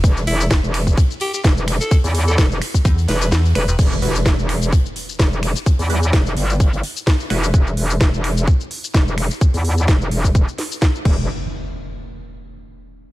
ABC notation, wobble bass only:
X:1
M:4/4
L:1/16
Q:"Swing 16ths" 1/4=128
K:Em
V:1 name="Wobble bass" clef=bass
E,,,2 E,,,2 z E,,,3 z4 E,,,3 z | z E,,3 E,,,2 z4 E,,,2 z2 E,,, z | E,,,2 E,,,2 E,,, E,,,3 z4 E,,,3 z | z E,,3 E,,,2 G,,,3 G,,, z4 E,,,2 |
E,,,2 E,,,2 E,,, E,,,3 z4 E,,,3 z | z E,,3 E,,,2 E,,,3 z4 z E,,,2 | z16 |]